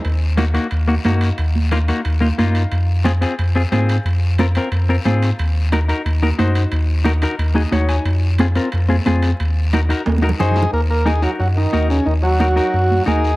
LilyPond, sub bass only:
\new Staff \with { instrumentName = "Sub bass" } { \clef bass \time 4/4 \key ees \dorian \tempo 4 = 180 ees,2 ees,4 ges,4 | ees,2 ees,4 ges,4 | f,2 f,4 aes,4 | f,2 f,4 aes,4 |
ees,2 ees,4 ges,4 | ees,2 ees,4 ees,4 | f,2 f,4 f,4 | ees,2 ees,4 ges,4 |
ees,2 ges,4 ees,4 | ees,2 ges,4 ees,4 | }